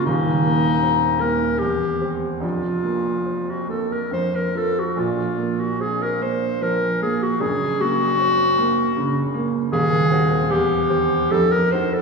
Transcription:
0.05 grand piano D#1 D#2, clarinet D#4
0.44 grand piano A#3
0.82 grand piano C4
1.21 grand piano A#3, clarinet A#4
1.59 grand piano E2, clarinet G4
2.01 grand piano C4 G4
2.40 grand piano F1 F2, clarinet F4
2.83 grand piano A#3
3.26 grand piano C4
3.51 clarinet F#4
3.69 grand piano A#3, clarinet A4
3.93 clarinet A#4
4.11 grand piano F2, clarinet C5
4.36 clarinet A#4
4.55 grand piano C4 F4, clarinet A4
4.79 clarinet F#4
4.96 grand piano A#1 A#2, clarinet F4
5.38 grand piano A#3
5.61 clarinet F#4
5.80 grand piano C4, clarinet G#4
6.03 clarinet A#4
6.21 grand piano A#3, clarinet C5
6.61 grand piano F3, clarinet A#4
7.01 grand piano A#3, clarinet G#4
7.23 clarinet F#4
7.40 grand piano F#1 F#2, clarinet G#4
7.80 grand piano A#3, clarinet F#4
8.20 grand piano C4
8.58 grand piano A#3
8.97 grand piano C#3
9.34 grand piano A#3
9.72 grand piano D#1 D#2, clarinet G#4
10.11 grand piano C4 F#4
10.50 grand piano E2, clarinet G4
10.90 grand piano C4 G4
11.31 grand piano F2, clarinet A4
11.52 clarinet A#4
11.72 grand piano D#4 F#4, clarinet C5
11.94 clarinet A4

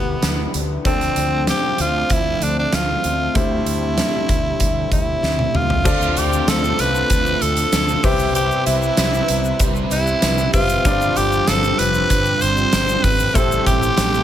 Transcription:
Already playing: fretless electric bass D2, grand piano C3 D3 G4 B4 E5, analog synth pad D3 E4 G4 B4, tenor saxophone B3
0.22 fretless electric bass D2, snare, closed hi-hat
0.54 fretless electric bass D2, closed hi-hat
0.84 fretless electric bass D2, grand piano D3 F3 C4 A4 D5, analog synth pad F3 A3 C4, tenor saxophone C4, kick, closed hi-hat
1.01 closed hi-hat
1.16 fretless electric bass D2, closed hi-hat
1.47 tenor saxophone G4, snare, closed hi-hat
1.78 fretless electric bass D2, tenor saxophone F4, closed hi-hat
2.10 fretless electric bass D2, tenor saxophone E4, kick, closed hi-hat
2.42 fretless electric bass D2, tenor saxophone D4, closed hi-hat
2.59 tenor saxophone D4
2.72 fretless electric bass D2, tenor saxophone F4, snare, closed hi-hat
3.04 fretless electric bass D2, closed hi-hat
3.35 fretless electric bass D2, grand piano D3 A3 G4 C5 E5, analog synth pad G3, tenor saxophone E4, kick, closed hi-hat
3.66 fretless electric bass D2, closed hi-hat
3.98 snare, closed hi-hat
4.29 fretless electric bass D2, kick, closed hi-hat
4.60 fretless electric bass D2, kick, closed hi-hat
4.92 fretless electric bass D2, tenor saxophone E4, kick, closed hi-hat
5.23 fretless electric bass D2, snare
5.39 high tom
5.54 fretless electric bass D2, tenor saxophone F4, mid tom
5.70 floor tom
5.84 fretless electric bass D2, overdriven electric guitar D3 A3 D4, analog synth pad D3 A3 C4 F4, grand piano D3 C4 F4 A4 D5, kick, crash, shaker
6.02 shaker
6.16 fretless electric bass D2, tenor saxophone G4, closed hi-hat, shaker
6.33 shaker
6.46 fretless electric bass D2, overdriven electric guitar D3 A3 D4, tenor saxophone A4, snare, closed hi-hat, tambourine, shaker
6.64 shaker
6.79 fretless electric bass C2, tenor saxophone B4, closed hi-hat
6.95 shaker
7.10 fretless electric bass D2, overdriven electric guitar D3 A3 D4, kick, closed hi-hat, shaker
7.26 shaker
7.41 fretless electric bass D2, tenor saxophone A4, closed hi-hat, shaker
7.57 closed hi-hat, shaker
7.72 fretless electric bass D2, snare, closed hi-hat, tambourine, shaker
7.88 shaker
8.03 fretless electric bass C2, analog synth pad C3 G3 B4 E5, grand piano C3 C4 G4 B4 E5, overdriven electric guitar C3 G3 C4, tenor saxophone G4, kick, open hi-hat, shaker
8.19 shaker
8.35 tenor saxophone G4, closed hi-hat, shaker
8.51 shaker
8.66 fretless electric bass C2, tenor saxophone E4, closed hi-hat, shaker
8.82 shaker
8.97 fretless electric bass C2, snare, closed hi-hat, tambourine, shaker
9.14 shaker
9.28 fretless electric bass C2, closed hi-hat
9.45 shaker
9.59 fretless electric bass C2, overdriven electric guitar C3 G3, kick, closed hi-hat, shaker
9.63 overdriven electric guitar C4
9.76 shaker
9.91 fretless electric bass C2, tenor saxophone E4, closed hi-hat, shaker
10.07 shaker
10.22 fretless electric bass C2, snare, closed hi-hat, tambourine, shaker
10.38 shaker
10.53 fretless electric bass F#1, grand piano C4 G4 B4 E5, tenor saxophone F4, kick, open hi-hat, shaker
10.69 closed hi-hat, shaker
10.84 fretless electric bass G1, overdriven electric guitar G2 D3 G3, grand piano G2 B3 F4 G4 D5, analog synth pad F3 C4, kick, closed hi-hat, shaker
10.91 grand piano C4
11.01 shaker
11.16 fretless electric bass G1, tenor saxophone G4, closed hi-hat, shaker
11.32 shaker
11.47 fretless electric bass G1, overdriven electric guitar G2 D3 G3, tenor saxophone A4, snare, closed hi-hat, tambourine, shaker
11.64 shaker
11.79 fretless electric bass F1, tenor saxophone B4, closed hi-hat
11.94 shaker
12.09 fretless electric bass G1, overdriven electric guitar G2 D3 G3, kick, closed hi-hat, shaker
12.25 shaker
12.41 fretless electric bass G1, tenor saxophone C5, closed hi-hat, shaker
12.57 shaker
12.73 fretless electric bass G1, snare, closed hi-hat, tambourine, shaker
12.88 shaker
13.04 fretless electric bass G#1, tenor saxophone B4, kick, open hi-hat, shaker
13.19 shaker
13.34 fretless electric bass A1, overdriven electric guitar A2 E3 A3, grand piano A2 A3 E4 G4 C5, analog synth pad A3, tenor saxophone A4, kick, closed hi-hat, shaker
13.52 shaker
13.66 fretless electric bass A1, overdriven electric guitar E3 A3, tenor saxophone G4, kick, closed hi-hat, shaker
13.83 shaker
13.97 fretless electric bass A1, snare, closed hi-hat, tambourine, shaker
14.14 shaker

